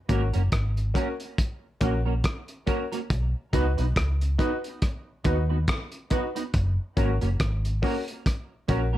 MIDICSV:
0, 0, Header, 1, 5, 480
1, 0, Start_track
1, 0, Key_signature, 6, "major"
1, 0, Tempo, 859599
1, 1732, Time_signature, 4, 2, 24, 8
1, 5014, End_track
2, 0, Start_track
2, 0, Title_t, "Upright piano"
2, 0, Program_c, 0, 0
2, 50, Note_on_c, 0, 61, 78
2, 53, Note_on_c, 0, 66, 76
2, 57, Note_on_c, 0, 70, 86
2, 139, Note_off_c, 0, 61, 0
2, 141, Note_off_c, 0, 66, 0
2, 143, Note_off_c, 0, 70, 0
2, 526, Note_on_c, 0, 61, 83
2, 530, Note_on_c, 0, 66, 76
2, 533, Note_on_c, 0, 70, 93
2, 617, Note_off_c, 0, 61, 0
2, 619, Note_off_c, 0, 66, 0
2, 621, Note_off_c, 0, 70, 0
2, 1009, Note_on_c, 0, 61, 78
2, 1012, Note_on_c, 0, 66, 78
2, 1016, Note_on_c, 0, 70, 87
2, 1098, Note_off_c, 0, 61, 0
2, 1100, Note_off_c, 0, 66, 0
2, 1102, Note_off_c, 0, 70, 0
2, 1489, Note_on_c, 0, 61, 77
2, 1491, Note_on_c, 0, 66, 75
2, 1495, Note_on_c, 0, 70, 96
2, 1578, Note_off_c, 0, 61, 0
2, 1579, Note_off_c, 0, 66, 0
2, 1581, Note_off_c, 0, 70, 0
2, 1629, Note_on_c, 0, 66, 23
2, 1629, Note_on_c, 0, 70, 26
2, 1670, Note_off_c, 0, 66, 0
2, 1670, Note_off_c, 0, 70, 0
2, 1970, Note_on_c, 0, 63, 88
2, 1973, Note_on_c, 0, 66, 82
2, 1977, Note_on_c, 0, 71, 97
2, 2059, Note_off_c, 0, 63, 0
2, 2060, Note_off_c, 0, 66, 0
2, 2062, Note_off_c, 0, 71, 0
2, 2448, Note_on_c, 0, 63, 94
2, 2452, Note_on_c, 0, 66, 83
2, 2456, Note_on_c, 0, 71, 95
2, 2538, Note_off_c, 0, 63, 0
2, 2539, Note_off_c, 0, 66, 0
2, 2541, Note_off_c, 0, 71, 0
2, 2928, Note_on_c, 0, 63, 82
2, 2931, Note_on_c, 0, 66, 72
2, 2935, Note_on_c, 0, 71, 89
2, 3018, Note_off_c, 0, 63, 0
2, 3019, Note_off_c, 0, 66, 0
2, 3021, Note_off_c, 0, 71, 0
2, 3409, Note_on_c, 0, 63, 87
2, 3413, Note_on_c, 0, 66, 79
2, 3415, Note_on_c, 0, 71, 87
2, 3498, Note_off_c, 0, 63, 0
2, 3500, Note_off_c, 0, 66, 0
2, 3501, Note_off_c, 0, 71, 0
2, 3890, Note_on_c, 0, 61, 87
2, 3894, Note_on_c, 0, 66, 80
2, 3897, Note_on_c, 0, 70, 91
2, 3978, Note_off_c, 0, 61, 0
2, 3980, Note_off_c, 0, 66, 0
2, 3982, Note_off_c, 0, 70, 0
2, 4368, Note_on_c, 0, 61, 92
2, 4372, Note_on_c, 0, 66, 83
2, 4376, Note_on_c, 0, 70, 100
2, 4457, Note_off_c, 0, 61, 0
2, 4459, Note_off_c, 0, 66, 0
2, 4461, Note_off_c, 0, 70, 0
2, 4849, Note_on_c, 0, 61, 80
2, 4852, Note_on_c, 0, 66, 81
2, 4856, Note_on_c, 0, 70, 92
2, 4938, Note_off_c, 0, 61, 0
2, 4939, Note_off_c, 0, 66, 0
2, 4941, Note_off_c, 0, 70, 0
2, 5014, End_track
3, 0, Start_track
3, 0, Title_t, "Clean electric guitar"
3, 0, Program_c, 1, 27
3, 48, Note_on_c, 1, 58, 79
3, 52, Note_on_c, 1, 61, 79
3, 56, Note_on_c, 1, 66, 82
3, 57, Note_on_c, 1, 70, 85
3, 114, Note_off_c, 1, 58, 0
3, 116, Note_off_c, 1, 61, 0
3, 118, Note_off_c, 1, 66, 0
3, 119, Note_off_c, 1, 70, 0
3, 186, Note_on_c, 1, 70, 61
3, 189, Note_on_c, 1, 66, 60
3, 191, Note_on_c, 1, 61, 52
3, 194, Note_on_c, 1, 58, 46
3, 226, Note_off_c, 1, 70, 0
3, 227, Note_off_c, 1, 66, 0
3, 228, Note_off_c, 1, 61, 0
3, 229, Note_off_c, 1, 58, 0
3, 531, Note_on_c, 1, 58, 73
3, 534, Note_on_c, 1, 61, 79
3, 535, Note_on_c, 1, 66, 87
3, 538, Note_on_c, 1, 70, 84
3, 595, Note_off_c, 1, 58, 0
3, 597, Note_off_c, 1, 61, 0
3, 598, Note_off_c, 1, 66, 0
3, 599, Note_off_c, 1, 70, 0
3, 1011, Note_on_c, 1, 58, 79
3, 1016, Note_on_c, 1, 61, 74
3, 1018, Note_on_c, 1, 66, 78
3, 1018, Note_on_c, 1, 70, 80
3, 1075, Note_off_c, 1, 58, 0
3, 1077, Note_off_c, 1, 61, 0
3, 1079, Note_off_c, 1, 66, 0
3, 1079, Note_off_c, 1, 70, 0
3, 1147, Note_on_c, 1, 70, 64
3, 1149, Note_on_c, 1, 66, 58
3, 1151, Note_on_c, 1, 61, 58
3, 1154, Note_on_c, 1, 58, 52
3, 1186, Note_off_c, 1, 70, 0
3, 1187, Note_off_c, 1, 66, 0
3, 1188, Note_off_c, 1, 61, 0
3, 1189, Note_off_c, 1, 58, 0
3, 1487, Note_on_c, 1, 58, 71
3, 1491, Note_on_c, 1, 61, 79
3, 1491, Note_on_c, 1, 66, 86
3, 1496, Note_on_c, 1, 70, 84
3, 1553, Note_off_c, 1, 58, 0
3, 1555, Note_off_c, 1, 61, 0
3, 1555, Note_off_c, 1, 66, 0
3, 1558, Note_off_c, 1, 70, 0
3, 1629, Note_on_c, 1, 70, 63
3, 1632, Note_on_c, 1, 66, 60
3, 1634, Note_on_c, 1, 61, 55
3, 1638, Note_on_c, 1, 58, 56
3, 1666, Note_off_c, 1, 70, 0
3, 1668, Note_off_c, 1, 66, 0
3, 1669, Note_off_c, 1, 61, 0
3, 1671, Note_off_c, 1, 58, 0
3, 1971, Note_on_c, 1, 59, 81
3, 1971, Note_on_c, 1, 63, 79
3, 1975, Note_on_c, 1, 66, 88
3, 1979, Note_on_c, 1, 71, 96
3, 2035, Note_off_c, 1, 59, 0
3, 2035, Note_off_c, 1, 63, 0
3, 2037, Note_off_c, 1, 66, 0
3, 2039, Note_off_c, 1, 71, 0
3, 2107, Note_on_c, 1, 71, 56
3, 2108, Note_on_c, 1, 66, 57
3, 2111, Note_on_c, 1, 63, 55
3, 2114, Note_on_c, 1, 59, 46
3, 2145, Note_off_c, 1, 71, 0
3, 2146, Note_off_c, 1, 66, 0
3, 2147, Note_off_c, 1, 63, 0
3, 2149, Note_off_c, 1, 59, 0
3, 2449, Note_on_c, 1, 59, 74
3, 2454, Note_on_c, 1, 63, 85
3, 2454, Note_on_c, 1, 66, 78
3, 2457, Note_on_c, 1, 71, 88
3, 2514, Note_off_c, 1, 59, 0
3, 2516, Note_off_c, 1, 63, 0
3, 2516, Note_off_c, 1, 66, 0
3, 2518, Note_off_c, 1, 71, 0
3, 2927, Note_on_c, 1, 59, 72
3, 2932, Note_on_c, 1, 63, 77
3, 2933, Note_on_c, 1, 66, 81
3, 2936, Note_on_c, 1, 71, 79
3, 2993, Note_off_c, 1, 59, 0
3, 2995, Note_off_c, 1, 63, 0
3, 2995, Note_off_c, 1, 66, 0
3, 2997, Note_off_c, 1, 71, 0
3, 3068, Note_on_c, 1, 71, 63
3, 3071, Note_on_c, 1, 66, 58
3, 3073, Note_on_c, 1, 63, 53
3, 3076, Note_on_c, 1, 59, 53
3, 3105, Note_off_c, 1, 71, 0
3, 3107, Note_off_c, 1, 66, 0
3, 3108, Note_off_c, 1, 63, 0
3, 3110, Note_off_c, 1, 59, 0
3, 3409, Note_on_c, 1, 59, 73
3, 3413, Note_on_c, 1, 63, 67
3, 3414, Note_on_c, 1, 66, 85
3, 3416, Note_on_c, 1, 71, 77
3, 3474, Note_off_c, 1, 59, 0
3, 3476, Note_off_c, 1, 63, 0
3, 3476, Note_off_c, 1, 66, 0
3, 3477, Note_off_c, 1, 71, 0
3, 3548, Note_on_c, 1, 71, 62
3, 3550, Note_on_c, 1, 66, 56
3, 3553, Note_on_c, 1, 63, 57
3, 3555, Note_on_c, 1, 59, 52
3, 3585, Note_off_c, 1, 71, 0
3, 3587, Note_off_c, 1, 66, 0
3, 3588, Note_off_c, 1, 63, 0
3, 3589, Note_off_c, 1, 59, 0
3, 3890, Note_on_c, 1, 58, 74
3, 3895, Note_on_c, 1, 61, 87
3, 3896, Note_on_c, 1, 66, 84
3, 3898, Note_on_c, 1, 70, 82
3, 3954, Note_off_c, 1, 58, 0
3, 3956, Note_off_c, 1, 61, 0
3, 3957, Note_off_c, 1, 66, 0
3, 3958, Note_off_c, 1, 70, 0
3, 4028, Note_on_c, 1, 66, 55
3, 4028, Note_on_c, 1, 70, 55
3, 4030, Note_on_c, 1, 61, 54
3, 4032, Note_on_c, 1, 58, 51
3, 4065, Note_off_c, 1, 66, 0
3, 4065, Note_off_c, 1, 70, 0
3, 4067, Note_off_c, 1, 61, 0
3, 4068, Note_off_c, 1, 58, 0
3, 4374, Note_on_c, 1, 58, 82
3, 4375, Note_on_c, 1, 61, 86
3, 4378, Note_on_c, 1, 66, 80
3, 4380, Note_on_c, 1, 70, 87
3, 4436, Note_off_c, 1, 58, 0
3, 4437, Note_off_c, 1, 61, 0
3, 4438, Note_off_c, 1, 66, 0
3, 4439, Note_off_c, 1, 70, 0
3, 4846, Note_on_c, 1, 58, 64
3, 4849, Note_on_c, 1, 61, 76
3, 4852, Note_on_c, 1, 66, 79
3, 4853, Note_on_c, 1, 70, 75
3, 4912, Note_off_c, 1, 58, 0
3, 4913, Note_off_c, 1, 61, 0
3, 4915, Note_off_c, 1, 66, 0
3, 4915, Note_off_c, 1, 70, 0
3, 4986, Note_on_c, 1, 70, 61
3, 4989, Note_on_c, 1, 66, 56
3, 4992, Note_on_c, 1, 61, 50
3, 4994, Note_on_c, 1, 58, 54
3, 5014, Note_off_c, 1, 58, 0
3, 5014, Note_off_c, 1, 61, 0
3, 5014, Note_off_c, 1, 66, 0
3, 5014, Note_off_c, 1, 70, 0
3, 5014, End_track
4, 0, Start_track
4, 0, Title_t, "Fingered electric bass"
4, 0, Program_c, 2, 33
4, 56, Note_on_c, 2, 32, 79
4, 179, Note_off_c, 2, 32, 0
4, 199, Note_on_c, 2, 30, 84
4, 289, Note_off_c, 2, 30, 0
4, 296, Note_on_c, 2, 32, 76
4, 513, Note_off_c, 2, 32, 0
4, 1016, Note_on_c, 2, 34, 84
4, 1233, Note_off_c, 2, 34, 0
4, 1736, Note_on_c, 2, 35, 88
4, 1858, Note_off_c, 2, 35, 0
4, 1977, Note_on_c, 2, 37, 90
4, 2098, Note_off_c, 2, 37, 0
4, 2118, Note_on_c, 2, 35, 96
4, 2208, Note_off_c, 2, 35, 0
4, 2217, Note_on_c, 2, 37, 81
4, 2433, Note_off_c, 2, 37, 0
4, 2935, Note_on_c, 2, 39, 76
4, 3152, Note_off_c, 2, 39, 0
4, 3655, Note_on_c, 2, 30, 99
4, 3777, Note_off_c, 2, 30, 0
4, 3897, Note_on_c, 2, 32, 87
4, 4018, Note_off_c, 2, 32, 0
4, 4036, Note_on_c, 2, 30, 93
4, 4127, Note_off_c, 2, 30, 0
4, 4135, Note_on_c, 2, 32, 85
4, 4352, Note_off_c, 2, 32, 0
4, 4856, Note_on_c, 2, 34, 81
4, 5014, Note_off_c, 2, 34, 0
4, 5014, End_track
5, 0, Start_track
5, 0, Title_t, "Drums"
5, 51, Note_on_c, 9, 42, 62
5, 52, Note_on_c, 9, 36, 90
5, 107, Note_off_c, 9, 42, 0
5, 108, Note_off_c, 9, 36, 0
5, 187, Note_on_c, 9, 42, 49
5, 243, Note_off_c, 9, 42, 0
5, 290, Note_on_c, 9, 42, 79
5, 292, Note_on_c, 9, 36, 103
5, 295, Note_on_c, 9, 37, 104
5, 346, Note_off_c, 9, 42, 0
5, 347, Note_off_c, 9, 36, 0
5, 351, Note_off_c, 9, 37, 0
5, 431, Note_on_c, 9, 42, 45
5, 487, Note_off_c, 9, 42, 0
5, 531, Note_on_c, 9, 36, 88
5, 535, Note_on_c, 9, 42, 72
5, 587, Note_off_c, 9, 36, 0
5, 591, Note_off_c, 9, 42, 0
5, 669, Note_on_c, 9, 42, 44
5, 725, Note_off_c, 9, 42, 0
5, 773, Note_on_c, 9, 36, 103
5, 773, Note_on_c, 9, 42, 77
5, 828, Note_off_c, 9, 36, 0
5, 829, Note_off_c, 9, 42, 0
5, 1009, Note_on_c, 9, 42, 68
5, 1012, Note_on_c, 9, 36, 91
5, 1065, Note_off_c, 9, 42, 0
5, 1068, Note_off_c, 9, 36, 0
5, 1250, Note_on_c, 9, 42, 79
5, 1252, Note_on_c, 9, 36, 104
5, 1259, Note_on_c, 9, 37, 105
5, 1306, Note_off_c, 9, 42, 0
5, 1307, Note_off_c, 9, 36, 0
5, 1315, Note_off_c, 9, 37, 0
5, 1385, Note_on_c, 9, 42, 43
5, 1441, Note_off_c, 9, 42, 0
5, 1491, Note_on_c, 9, 42, 71
5, 1493, Note_on_c, 9, 36, 81
5, 1547, Note_off_c, 9, 42, 0
5, 1549, Note_off_c, 9, 36, 0
5, 1633, Note_on_c, 9, 42, 52
5, 1689, Note_off_c, 9, 42, 0
5, 1732, Note_on_c, 9, 36, 104
5, 1734, Note_on_c, 9, 42, 76
5, 1788, Note_off_c, 9, 36, 0
5, 1790, Note_off_c, 9, 42, 0
5, 1973, Note_on_c, 9, 36, 88
5, 1974, Note_on_c, 9, 42, 67
5, 2028, Note_off_c, 9, 36, 0
5, 2030, Note_off_c, 9, 42, 0
5, 2111, Note_on_c, 9, 42, 47
5, 2166, Note_off_c, 9, 42, 0
5, 2212, Note_on_c, 9, 36, 106
5, 2214, Note_on_c, 9, 42, 80
5, 2219, Note_on_c, 9, 37, 106
5, 2268, Note_off_c, 9, 36, 0
5, 2270, Note_off_c, 9, 42, 0
5, 2274, Note_off_c, 9, 37, 0
5, 2353, Note_on_c, 9, 42, 51
5, 2409, Note_off_c, 9, 42, 0
5, 2452, Note_on_c, 9, 36, 89
5, 2457, Note_on_c, 9, 42, 72
5, 2508, Note_off_c, 9, 36, 0
5, 2513, Note_off_c, 9, 42, 0
5, 2592, Note_on_c, 9, 42, 47
5, 2648, Note_off_c, 9, 42, 0
5, 2691, Note_on_c, 9, 42, 80
5, 2693, Note_on_c, 9, 36, 111
5, 2698, Note_on_c, 9, 37, 62
5, 2747, Note_off_c, 9, 42, 0
5, 2749, Note_off_c, 9, 36, 0
5, 2754, Note_off_c, 9, 37, 0
5, 2929, Note_on_c, 9, 42, 72
5, 2932, Note_on_c, 9, 36, 90
5, 2985, Note_off_c, 9, 42, 0
5, 2988, Note_off_c, 9, 36, 0
5, 3170, Note_on_c, 9, 42, 78
5, 3171, Note_on_c, 9, 36, 104
5, 3179, Note_on_c, 9, 37, 106
5, 3226, Note_off_c, 9, 42, 0
5, 3227, Note_off_c, 9, 36, 0
5, 3235, Note_off_c, 9, 37, 0
5, 3304, Note_on_c, 9, 42, 51
5, 3360, Note_off_c, 9, 42, 0
5, 3408, Note_on_c, 9, 42, 65
5, 3412, Note_on_c, 9, 36, 78
5, 3464, Note_off_c, 9, 42, 0
5, 3468, Note_off_c, 9, 36, 0
5, 3551, Note_on_c, 9, 42, 54
5, 3607, Note_off_c, 9, 42, 0
5, 3650, Note_on_c, 9, 42, 74
5, 3651, Note_on_c, 9, 36, 104
5, 3706, Note_off_c, 9, 42, 0
5, 3707, Note_off_c, 9, 36, 0
5, 3892, Note_on_c, 9, 36, 86
5, 3892, Note_on_c, 9, 42, 60
5, 3948, Note_off_c, 9, 36, 0
5, 3948, Note_off_c, 9, 42, 0
5, 4028, Note_on_c, 9, 42, 48
5, 4084, Note_off_c, 9, 42, 0
5, 4131, Note_on_c, 9, 42, 81
5, 4132, Note_on_c, 9, 36, 106
5, 4136, Note_on_c, 9, 37, 105
5, 4187, Note_off_c, 9, 42, 0
5, 4188, Note_off_c, 9, 36, 0
5, 4192, Note_off_c, 9, 37, 0
5, 4271, Note_on_c, 9, 42, 50
5, 4327, Note_off_c, 9, 42, 0
5, 4371, Note_on_c, 9, 36, 83
5, 4376, Note_on_c, 9, 46, 73
5, 4427, Note_off_c, 9, 36, 0
5, 4432, Note_off_c, 9, 46, 0
5, 4511, Note_on_c, 9, 42, 47
5, 4567, Note_off_c, 9, 42, 0
5, 4612, Note_on_c, 9, 36, 104
5, 4612, Note_on_c, 9, 42, 74
5, 4619, Note_on_c, 9, 37, 67
5, 4668, Note_off_c, 9, 36, 0
5, 4668, Note_off_c, 9, 42, 0
5, 4675, Note_off_c, 9, 37, 0
5, 4850, Note_on_c, 9, 42, 71
5, 4852, Note_on_c, 9, 36, 92
5, 4906, Note_off_c, 9, 42, 0
5, 4908, Note_off_c, 9, 36, 0
5, 5014, End_track
0, 0, End_of_file